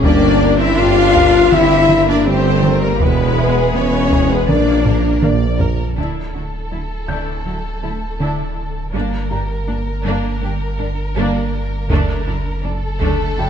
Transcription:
Already playing: felt piano C#4 C#6
0.03 double bass section G1, tuba G1, sub bass G1, synth arpeggio sound G3, viola section A#3, cello section D4, french horn section D4, violin section G4 D5, taiko
0.42 synth arpeggio sound D4, violin section A#4
0.59 viola section C4, cello section E4, french horn section E4, violin section E5
0.77 double bass section G1, tuba G1, viola section D4, synth arpeggio sound D4, french horn section F4, cello section F4, violin section G4 F5
1.15 synth arpeggio sound G3, violin section A#4, taiko
1.51 double bass section G1, tuba G1, viola section C4, cello section E4, french horn section E4, violin section G4 E5, synth arpeggio sound G4, taiko mid
1.89 violin section A#4, taiko mid
2.07 viola section A#3, cello section D4, french horn section D4, violin section D5
2.26 double bass section G1, tuba G1, synth arpeggio sound G3, viola section A3, french horn section C4, cello section C4, violin section G4 C5
2.63 synth arpeggio sound G4, violin section A#4, taiko mid
2.82 viola section G3, french horn section A#3, cello section A#3, violin section A#4
3.00 tuba E1, double bass section E1, sub bass E1, synth arpeggio sound E3, viola section G#3, cello section B3, french horn section B3, violin section B4, taiko
3.38 synth arpeggio sound B3, violin section G#4, felt piano E5
3.75 tuba E1, double bass section E1, viola section B3, synth arpeggio sound B3, french horn section C#4, cello section C#4, violin section B4 C#5
4.11 synth arpeggio sound E3, violin section G#4, taiko
4.30 viola section G#3, cello section B3, french horn section B3, violin section B4
4.49 sub bass A#1, tuba A#1, double bass section A#1, viola section A#3, cello section D4, french horn section D4, synth arpeggio sound A#4, violin section D5, taiko mid
4.86 violin section A#4, taiko low-mid
5.22 tuba A#1, double bass section A#1, synth arpeggio sound A#3, violin section D5, taiko mid
5.59 violin section A#4, synth arpeggio sound A#4, taiko low
5.96 sub bass D1, double bass section D2, cello section D3, synth arpeggio sound D3, violin section D4 A4, viola section E4, taiko
6.34 double bass section D2, cello section D3, synth arpeggio sound D4, viola section E4, violin section F#4
6.71 double bass section D2, cello section D3, synth arpeggio sound F#3, violin section E4, viola section E4
7.08 double bass section D2, cello section D3, synth arpeggio sound D3, violin section D4, viola section E4, felt piano G6, taiko
7.45 double bass section D2, cello section D3, synth arpeggio sound F#3, viola section E4, violin section F#4
7.82 double bass section D2, cello section D3, synth arpeggio sound A3, viola section E4, violin section E4
8.19 double bass section D2, cello section D3, synth arpeggio sound D3, violin section D4, viola section E4
8.93 double bass section G1, sub bass G1, cello section G2, synth arpeggio sound G3, violin section A#3 A#4, viola section D4
9.30 double bass section G1, cello section G2, viola section D4, synth arpeggio sound G4, violin section G4, felt piano A#5
9.67 double bass section G1, cello section G2, synth arpeggio sound A#3, viola section D4, violin section D4
10.04 double bass section G1, cello section G2, synth arpeggio sound G3, violin section A#3, viola section D4
10.42 double bass section G1, cello section G2, synth arpeggio sound A#3, viola section D4, violin section G4
10.79 double bass section G1, cello section G2, viola section D4, synth arpeggio sound D4, violin section D4
11.16 double bass section G1, cello section G2, synth arpeggio sound G3, violin section A#3, viola section D4
11.90 double bass section F#1, sub bass F#1, cello section F#2, synth arpeggio sound D3, violin section A3, viola section D4, taiko
12.27 double bass section F#1, cello section F#2, viola section D4, synth arpeggio sound D4, violin section E4
12.63 double bass section F#1, cello section F#2, synth arpeggio sound F#3, violin section D4 A4, viola section D4
13.00 double bass section F#1, cello section F#2, synth arpeggio sound D3, violin section A3, viola section D4, taiko
13.38 double bass section F#1, cello section F#2, synth arpeggio sound F#3, viola section D4, violin section E4, felt piano G5

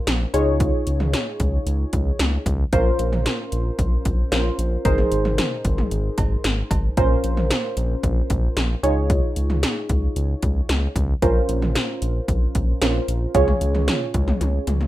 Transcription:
Already playing: synth keys C#4 F4 A#4 C5
0.07 analog synth bass A#1, snare, closed hi-hat
0.34 analog synth bass C#2, synth keys D#4 F4 G#4 C#5, closed hi-hat
0.60 kick, closed hi-hat
0.87 analog synth bass C#2, closed hi-hat
1.00 mid tom
1.13 snare, closed hi-hat
1.40 analog synth bass C#2, kick, closed hi-hat
1.66 analog synth bass C#2, closed hi-hat
1.93 analog synth bass C#2, kick, closed hi-hat
2.19 analog synth bass C#2, snare, closed hi-hat
2.46 analog synth bass C#2, kick, closed hi-hat
2.73 analog synth bass A#1, synth keys C#4 F4 A#4 C5, kick, closed hi-hat
2.99 analog synth bass A#1, closed hi-hat
3.13 mid tom
3.26 snare, closed hi-hat
3.52 analog synth bass A#1, closed hi-hat
3.79 analog synth bass A#1, kick, closed hi-hat
4.05 analog synth bass A#1, kick, closed hi-hat
4.32 analog synth bass A#1, synth keys C#4 F4 A#4 C5, snare, closed hi-hat
4.59 analog synth bass A#1, closed hi-hat
4.85 analog synth bass G#1, synth keys D#4 G#4 A#4 C5, kick, closed hi-hat
4.98 mid tom
5.12 analog synth bass G#1, closed hi-hat
5.25 mid tom
5.38 snare, closed hi-hat, mid tom
5.65 analog synth bass G#1, kick, closed hi-hat
5.78 mid tom
5.91 analog synth bass G#1, closed hi-hat
6.18 analog synth bass G#1, kick, closed hi-hat, cowbell
6.44 analog synth bass G#1, snare, closed hi-hat
6.71 analog synth bass G#1, kick, closed hi-hat, cowbell
6.97 analog synth bass A#1, synth keys C#4 F4 A#4 C5, kick, closed hi-hat
7.24 analog synth bass A#1, closed hi-hat
7.37 mid tom
7.51 snare, closed hi-hat
7.77 analog synth bass A#1, closed hi-hat
8.03 analog synth bass A#1, kick, closed hi-hat
8.30 analog synth bass A#1, kick, closed hi-hat
8.57 analog synth bass A#1, snare, closed hi-hat
8.83 analog synth bass C#2, synth keys D#4 F4 G#4 C#5, closed hi-hat
9.10 kick, closed hi-hat
9.36 analog synth bass C#2, closed hi-hat
9.50 mid tom
9.63 snare, closed hi-hat
9.89 analog synth bass C#2, kick, closed hi-hat
10.16 analog synth bass C#2, closed hi-hat
10.43 analog synth bass C#2, kick, closed hi-hat
10.69 analog synth bass C#2, snare, closed hi-hat
10.96 analog synth bass C#2, kick, closed hi-hat
11.22 analog synth bass A#1, synth keys C#4 F4 A#4 C5, kick, closed hi-hat
11.49 analog synth bass A#1, closed hi-hat
11.62 mid tom
11.75 snare, closed hi-hat
12.02 analog synth bass A#1, closed hi-hat
12.28 analog synth bass A#1, kick, closed hi-hat
12.55 analog synth bass A#1, kick, closed hi-hat
12.82 analog synth bass A#1, synth keys C#4 F4 A#4 C5, snare, closed hi-hat
13.08 analog synth bass A#1, closed hi-hat
13.35 analog synth bass C#2, synth keys C#4 F4 G#4 C#5, kick, closed hi-hat
13.48 mid tom
13.61 analog synth bass C#2, closed hi-hat
13.75 mid tom
13.88 snare, closed hi-hat, mid tom
14.14 analog synth bass C#2, kick, closed hi-hat
14.28 mid tom
14.41 analog synth bass C#2, closed hi-hat, high tom
14.67 analog synth bass C#2, closed hi-hat, mid tom
14.81 mid tom

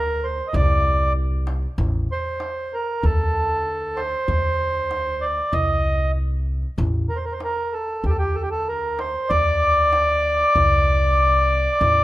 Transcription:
Already playing: upright bass D2, accordion A#4
0.07 darbuka ka
0.24 accordion C5
0.38 darbuka ka
0.48 accordion D#5
0.53 upright bass C2, accordion D5, darbuka dum
0.85 darbuka ka
1.16 darbuka ka
1.47 darbuka tek
1.63 darbuka ka
1.78 upright bass A1, darbuka dum
1.93 darbuka ka
2.09 accordion C5, darbuka ka
2.40 darbuka tek
2.72 accordion A#4, darbuka ka
3.03 upright bass D2, accordion A4, darbuka dum
3.35 darbuka ka
3.66 darbuka ka
3.97 accordion C5, darbuka tek
4.13 darbuka ka
4.28 upright bass D2, darbuka dum
4.44 darbuka ka
4.91 darbuka tek
5.07 darbuka ka
5.21 accordion D5
5.38 darbuka ka
5.52 upright bass C2, accordion D#5, darbuka dum
5.84 darbuka ka
6.15 darbuka ka
6.62 darbuka ka
6.78 upright bass A1, darbuka dum
6.93 darbuka ka
7.09 accordion A#4
7.16 accordion C5
7.25 accordion A#4
7.32 accordion C5
7.40 accordion A#4, darbuka tek
7.56 darbuka ka
7.73 accordion A4
7.88 darbuka ka
8.04 upright bass D2, accordion G4, darbuka dum
8.09 accordion A4
8.19 accordion G4
8.35 accordion A4, darbuka ka
8.42 accordion G4
8.51 accordion A4
8.67 accordion A#4, darbuka ka
8.99 accordion C5, darbuka tek
9.15 darbuka ka
9.29 upright bass D2, accordion D5, darbuka dum
9.45 darbuka ka
9.93 darbuka tek
10.08 darbuka ka
10.39 darbuka ka
10.55 upright bass C2, darbuka dum
11.18 darbuka ka
11.34 darbuka ka
11.81 upright bass A1, darbuka dum

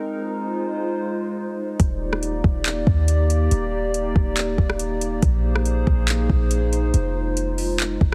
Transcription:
Already playing: ambient pad D#4
0.08 ambient pad G#3 F4 C5
1.80 808-style bass D#1, ambient pad A#3 G4 D5, kick, closed hi-hat
2.13 cross-stick
2.23 closed hi-hat
2.44 808-style bass D#1, kick
2.65 clap, closed hi-hat
2.87 808-style bass D#2, kick
3.08 closed hi-hat
3.30 closed hi-hat
3.51 808-style bass D#1, closed hi-hat
3.94 closed hi-hat
4.16 808-style bass D#1, kick
4.37 clap, closed hi-hat
4.58 808-style bass D#1, kick
4.70 cross-stick
4.79 closed hi-hat
5.01 closed hi-hat
5.22 808-style bass A#1, ambient pad A#3 D#4 G#4 C5, kick, closed hi-hat
5.56 cross-stick
5.65 closed hi-hat
5.87 808-style bass A#1, kick
6.08 clap, closed hi-hat
6.30 808-style bass A#1, kick
6.51 closed hi-hat
6.73 closed hi-hat
6.94 808-style bass F1, ambient pad G#3 F4, closed hi-hat
7.37 closed hi-hat
7.58 open hi-hat
7.80 clap, closed hi-hat
8.01 808-style bass F1, kick

